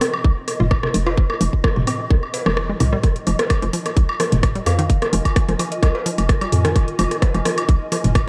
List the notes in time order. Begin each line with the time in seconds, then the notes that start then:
Already playing: D#5
0.01 C4, cross-stick, open hi-hat
0.14 low woodblock
0.24 C2, kick
0.48 cross-stick, open hi-hat, low woodblock
0.60 F1 F4, mid tom
0.71 kick, cross-stick, low woodblock
0.83 C3, cross-stick
0.94 F1, open hi-hat
1.07 F4, cowbell, low woodblock
1.18 kick
1.30 cross-stick, low woodblock
1.41 F1 F3, open hi-hat
1.53 kick
1.64 kick, cross-stick, low woodblock
1.76 F1 C3, mid tom
1.87 C4, open hi-hat, low woodblock
2.11 C2, kick, cross-stick
2.23 low woodblock
2.34 open hi-hat, cowbell
2.46 F1 F3, cross-stick, low woodblock
2.57 cross-stick
2.69 G#3
2.80 C2, mid tom, open hi-hat, low woodblock
2.93 G3, cross-stick
3.03 F4, kick, cross-stick, closed hi-hat
3.11 A#4
3.16 closed hi-hat
3.27 F1 F3, open hi-hat, low woodblock
3.39 cross-stick, closed hi-hat, cowbell
3.50 kick, cross-stick, closed hi-hat, low woodblock
3.62 F1 F3, closed hi-hat
3.73 F3, open hi-hat
3.86 cross-stick, closed hi-hat, low woodblock
3.97 C2 G#5, kick, closed hi-hat
4.09 low woodblock
4.20 F3, cross-stick, open hi-hat
4.32 F1, closed hi-hat, mid tom
4.43 kick, cross-stick, closed hi-hat, low woodblock
4.55 G3, closed hi-hat
4.66 F2 F5, cross-stick, open hi-hat, cowbell, low woodblock
4.79 D#3 F5, closed hi-hat
4.90 kick, closed hi-hat
5.02 cross-stick, closed hi-hat, low woodblock
5.13 F1 F3, open hi-hat
5.25 kick, closed hi-hat, low woodblock
5.36 kick, cross-stick, closed hi-hat
5.48 F1 F3, cross-stick, closed hi-hat
5.59 F3, open hi-hat, low woodblock
5.72 D#5, closed hi-hat
5.83 C2 D#5, kick, cross-stick, closed hi-hat, low woodblock
5.95 cowbell
6.06 F3, open hi-hat
6.18 F1, closed hi-hat, low woodblock
6.29 kick, cross-stick, closed hi-hat
6.41 G3, closed hi-hat, low woodblock
6.52 F2, mid tom, open hi-hat
6.65 D#3, cross-stick, closed hi-hat
6.76 kick, closed hi-hat, low woodblock
6.88 closed hi-hat
6.99 F1 F3, open hi-hat, low woodblock
7.11 cross-stick, closed hi-hat
7.22 kick, cross-stick, closed hi-hat, cowbell
7.34 F1 F3, closed hi-hat, low woodblock
7.45 F3, cross-stick, open hi-hat
7.58 closed hi-hat, low woodblock
7.69 C2, kick, closed hi-hat
7.92 F3, cross-stick, open hi-hat, low woodblock
8.04 F1, closed hi-hat, mid tom
8.15 kick, cross-stick, closed hi-hat, low woodblock